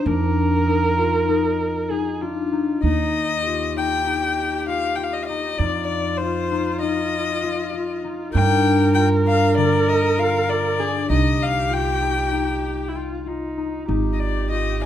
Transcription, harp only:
Already playing: D3 D#4 F4
0.06 D4
0.67 D#4
0.98 F4
1.28 D#4
1.91 D#4
2.22 D4
2.52 D#4
2.84 D#4
3.46 F4
3.77 D#4
4.06 D#4
4.68 F4
4.98 F4
5.29 D#4
5.61 D#4
6.22 F4
6.52 D#4
6.82 D#4
7.43 F4
7.73 F4
8.04 D#4
8.34 D4
8.95 F4
9.25 D4
9.56 D3
10.18 F4
10.49 F4
10.79 D4
11.09 D#4
11.70 F4
12.01 D#4
12.32 D#4
12.96 F4
13.26 F4
13.57 D#4
13.88 D#4
14.50 F4

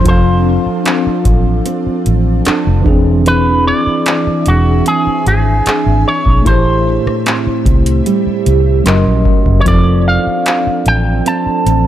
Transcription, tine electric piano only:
0.01 F3 F4
0.08 A4 F5
2.81 E3 D4
2.88 C4 G#4
6.42 A3 E4
6.48 G4 C5
8.84 F#3 C#4 A#4 C6
8.88 D#5
9.62 F3 C4
9.68 A4 D5

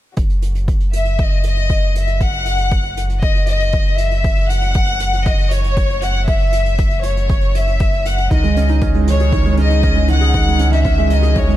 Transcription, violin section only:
0.94 E5
1.20 D#5
1.46 D#5
1.97 E5
2.21 F#5
3.22 D#5
3.48 D#5
3.98 E5
4.50 F#5
5.27 D#5
5.52 C#5
6.02 F#5
6.28 E5
7.05 C#5
7.55 E5
8.07 F#5
8.32 D#5
9.07 C#5
9.59 D#5
10.09 F#5
10.72 E5
11.11 D#5
11.37 C#5

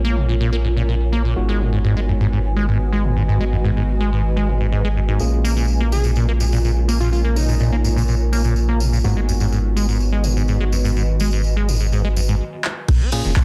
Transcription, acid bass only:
0.05 A#3
0.16 A#2
0.29 A#2
0.40 A#2
0.53 A#3
0.64 G#2
0.77 A#2
0.88 A#2
1.12 A#3
1.25 A#2
1.49 G#3
1.61 G#2
1.73 G#2
1.85 G#2
1.97 G#3
2.08 F#2
2.21 G#2
2.33 G#2
2.56 G#3
2.69 G#2
2.93 G#3
3.04 G#2
3.17 G#2
3.28 G#2
3.41 G#3
3.52 F#2
3.64 G#2
3.76 G#2
4.00 G#3
4.13 G#2
4.37 G#3
4.48 G#2
4.61 G#2
4.72 G#2
4.85 G#3
4.96 F#2
5.09 G#2
5.20 A#2
5.44 A#3
5.56 A#2
5.80 A#3
5.92 A#2
6.05 A#2
6.16 A#2
6.29 A#3
6.40 G#2
6.53 A#2
6.64 A#2
6.88 A#3
7.01 A#2
7.25 A#3
7.36 A#2
7.49 A#2
7.60 A#2
7.73 A#3
7.84 G#2
7.96 A#2
8.08 A#2
8.32 A#3
8.45 A#2
8.69 A#3
8.80 A#2
8.93 A#2
9.05 G#2
9.17 G#3
9.29 F#2
9.41 G#2
9.52 G#2
9.76 G#3
9.88 G#2
10.13 G#3
10.24 G#2
10.37 G#2
10.48 G#2
10.61 G#3
10.72 F#2
10.85 G#2
10.96 G#2
11.20 G#3
11.33 G#2
11.57 G#3
11.68 G#2
11.81 G#2
11.92 G#2
12.05 G#3
12.16 F#2
12.28 G#2
12.88 A#2
13.01 C#4
13.12 A#2
13.25 D#3
13.36 A#2

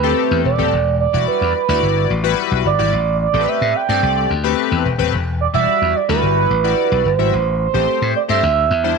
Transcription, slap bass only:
Already playing: D2
0.31 E2
0.45 E1
0.59 D#1
0.72 E1
1.14 E1
1.28 muted slap bass stroke
1.41 E2
1.69 D2
1.83 G1
2.10 A1
2.51 B1
2.65 G1
2.79 G#1
2.93 A1
3.34 A1
3.48 muted slap bass stroke
3.61 A2
3.89 G2
4.03 C2
4.30 D2
4.72 E2
4.85 E1
4.99 D#1
5.13 E1
5.54 E1
5.68 muted slap bass stroke
5.82 E2
6.09 D2
6.23 G1
6.50 A1
6.92 B1
7.05 G1
7.19 G#1
7.33 A1
7.74 A1
8.02 A2
8.29 G2
8.43 D2
8.71 E2

